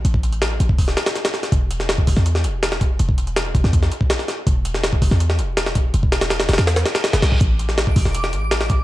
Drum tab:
HH |x---x-x-x---x---o---x-x-x-x---x-|x---x---x---o---x---x---x---x---|x---x-x-x---x---x---x---x---x---|x---x---x---o---x---x---x---x---|
SD |--------o---------o-o-o-o-o-o-o-|------o-o-----o---o-----o-o-----|--------o-----o---o-----o-o-o---|------o-o-----o---o-----o-o-----|
BD |--o-----------o-o---------------|o---------o-o---------------o---|--o---------o---o-----o---------|o---------o-o---------------o---|

HH |x---x-x-x-x-xxx-x-x-x-x-x-x-x---|x---x---x---o---x---x---x---x---|
SD |----o-o-o-o-ooo-o-o-o-o-o-o-o---|------o-o-----o---o-----o-o-----|
BD |--o---------------------------o-|o---------o-o---------------o---|